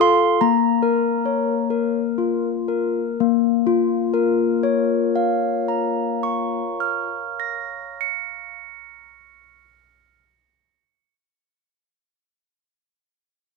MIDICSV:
0, 0, Header, 1, 2, 480
1, 0, Start_track
1, 0, Key_signature, -5, "minor"
1, 0, Tempo, 826446
1, 239, Time_signature, 6, 3, 24, 8
1, 729, Tempo, 920245
1, 1209, Tempo, 1025641
1, 1689, Tempo, 1077199
1, 6305, End_track
2, 0, Start_track
2, 0, Title_t, "Handbells"
2, 0, Program_c, 0, 14
2, 0, Note_on_c, 0, 65, 66
2, 4, Note_on_c, 0, 69, 43
2, 6, Note_on_c, 0, 77, 47
2, 6, Note_on_c, 0, 84, 82
2, 214, Note_off_c, 0, 69, 0
2, 215, Note_off_c, 0, 77, 0
2, 217, Note_off_c, 0, 65, 0
2, 229, Note_off_c, 0, 84, 0
2, 238, Note_on_c, 0, 82, 66
2, 240, Note_on_c, 0, 58, 52
2, 480, Note_on_c, 0, 70, 46
2, 729, Note_on_c, 0, 73, 39
2, 868, Note_off_c, 0, 70, 0
2, 941, Note_off_c, 0, 82, 0
2, 963, Note_on_c, 0, 70, 40
2, 1109, Note_off_c, 0, 73, 0
2, 1212, Note_on_c, 0, 65, 35
2, 1347, Note_off_c, 0, 70, 0
2, 1446, Note_on_c, 0, 70, 37
2, 1590, Note_off_c, 0, 65, 0
2, 1670, Note_off_c, 0, 58, 0
2, 1690, Note_off_c, 0, 70, 0
2, 1690, Note_on_c, 0, 58, 51
2, 1896, Note_on_c, 0, 65, 53
2, 2106, Note_on_c, 0, 70, 47
2, 2327, Note_on_c, 0, 73, 50
2, 2560, Note_on_c, 0, 77, 47
2, 2795, Note_on_c, 0, 82, 44
2, 3040, Note_on_c, 0, 85, 46
2, 3208, Note_off_c, 0, 58, 0
2, 3294, Note_on_c, 0, 89, 45
2, 3414, Note_off_c, 0, 65, 0
2, 3558, Note_on_c, 0, 94, 41
2, 3624, Note_off_c, 0, 70, 0
2, 3831, Note_on_c, 0, 97, 39
2, 3846, Note_off_c, 0, 73, 0
2, 4078, Note_off_c, 0, 77, 0
2, 4313, Note_off_c, 0, 82, 0
2, 4558, Note_off_c, 0, 85, 0
2, 4813, Note_off_c, 0, 89, 0
2, 5076, Note_off_c, 0, 94, 0
2, 5219, Note_off_c, 0, 97, 0
2, 6305, End_track
0, 0, End_of_file